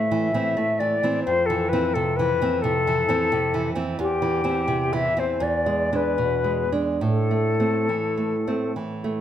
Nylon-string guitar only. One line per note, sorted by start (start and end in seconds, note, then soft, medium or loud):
0.00 1.20 A2 medium
0.00 0.26 A3 soft
0.11 0.33 E3 soft
0.34 0.55 E3 soft
0.34 0.55 C4 soft
0.57 0.93 A3 soft
0.80 1.02 E3 soft
1.03 1.23 E3 soft
1.03 1.23 C4 medium
1.27 3.96 F2 soft
1.50 1.72 E3 soft
1.73 1.92 E3 soft
1.73 1.92 C4 soft
1.95 2.31 C3 soft
2.19 2.40 E3 soft
2.42 2.61 E3 soft
2.42 2.62 C4 medium
2.64 3.00 C3 medium
2.87 3.07 E3 soft
3.09 3.29 E3 soft
3.09 3.29 C4 soft
3.32 3.67 C3 soft
3.54 3.74 E3 soft
3.75 3.96 E3 soft
3.75 3.96 C4 soft
3.99 5.37 E2 medium
4.22 4.43 E3 soft
4.44 4.65 E3 soft
4.44 4.65 C4 soft
4.68 5.06 C3 soft
4.93 5.15 E3 soft
5.17 5.39 E3 soft
5.17 5.39 C4 soft
5.40 6.99 E2 medium
5.66 5.92 G#3 soft
5.93 6.16 G#3 soft
5.93 6.16 D4 soft
6.18 6.63 B2 soft
6.44 6.71 G#3 soft
6.72 6.99 G#3 soft
6.72 6.99 D4 soft
7.01 9.21 A2 soft
7.31 7.59 A3 soft
7.60 7.86 A3 soft
7.60 7.86 C4 soft
7.89 8.35 E3 soft
8.17 8.46 A3 soft
8.47 8.72 A3 soft
8.47 8.73 C4 soft
8.76 9.20 E3 soft
9.04 9.21 A3 soft